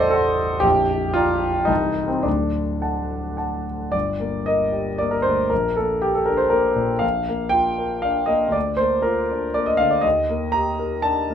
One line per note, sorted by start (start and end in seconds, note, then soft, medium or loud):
0.00 0.60 A0 soft
0.00 0.60 A1 medium
0.00 0.10 A4 medium
0.00 0.67 C5 loud
0.00 0.13 D5 medium
0.00 0.67 D#5 medium
0.00 0.13 F#5 soft
0.00 0.13 C6 soft
0.10 0.37 A4 medium
0.10 0.60 D5 soft
0.10 0.60 F#5 soft
0.10 0.60 C6 soft
0.60 1.66 A#0 soft
0.60 1.66 A#1 medium
0.60 1.14 G4 medium
1.14 1.68 F4 medium
1.14 1.66 D5 soft
1.14 1.66 G5 soft
1.14 1.66 A#5 soft
1.65 2.22 C1 soft
1.65 2.22 C2 medium
1.65 2.09 D#4 medium
1.65 2.20 D#5 soft
1.65 2.21 A5 soft
2.08 2.24 C4 medium
2.23 3.89 D1 soft
2.23 3.89 D2 soft
2.23 3.65 D4 medium
2.82 3.35 F#5 soft
2.82 3.35 A5 soft
3.37 3.89 F#5 soft
3.37 3.89 A5 soft
3.92 5.46 G1 soft
3.92 4.47 D5 medium
4.20 4.63 A#3 soft
4.46 4.89 A#4 soft
4.46 4.99 D#5 medium
4.72 5.14 G4 soft
4.98 5.41 A#3 soft
4.98 5.12 D5 medium
5.11 5.24 A#4 medium
5.22 5.51 D2 soft
5.22 5.49 C5 medium
5.50 7.00 A#1 soft
5.50 5.76 A#4 medium
5.76 6.18 A#3 soft
5.76 6.02 A4 medium
6.02 6.14 G4 medium
6.15 6.27 A4 medium
6.26 6.68 D4 soft
6.26 6.39 A#4 medium
6.37 6.51 C5 medium
6.50 6.92 A#3 soft
6.50 7.02 A#4 medium
6.75 7.02 A#2 soft
6.99 8.50 A#1 soft
6.99 7.52 F5 medium
7.29 7.69 A#3 soft
7.49 7.94 F4 soft
7.49 8.02 G5 medium
7.78 8.19 A#4 soft
8.02 8.45 D4 soft
8.02 8.28 F5 medium
8.26 8.54 A#3 soft
8.26 8.53 D#5 medium
8.48 9.97 D2 soft
8.52 8.79 D5 medium
8.77 9.20 A#3 soft
8.77 9.03 C5 medium
9.02 9.45 F4 soft
9.02 9.53 A#4 medium
9.31 9.70 D4 soft
9.54 9.95 A#3 soft
9.54 9.67 D5 medium
9.66 9.79 D#5 medium
9.77 10.05 D3 soft
9.77 9.91 F5 medium
9.90 10.04 D5 medium
10.01 11.34 D#2 soft
10.01 10.54 D#5 medium
10.29 10.70 A#3 soft
10.52 10.95 G4 soft
10.52 11.04 A#5 medium
10.79 11.20 A#4 soft
11.02 11.34 D4 soft
11.02 11.34 A5 medium
11.30 11.34 A#3 soft